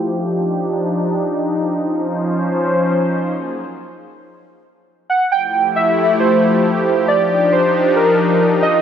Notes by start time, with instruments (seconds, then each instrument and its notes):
Already playing: analog synth pad F3 G4
0.04 analog synth pad D4 D#4
1.80 analog synth pad F3 C#4 C5
5.10 synth keys F#5
5.32 analog synth pad F3 A3 E4 G4, synth keys G5
5.76 synth keys E5
6.20 synth keys C5
7.08 analog synth pad D4 D#4, synth keys D5
7.52 synth keys C5
7.96 synth keys A#4
8.62 synth keys D#5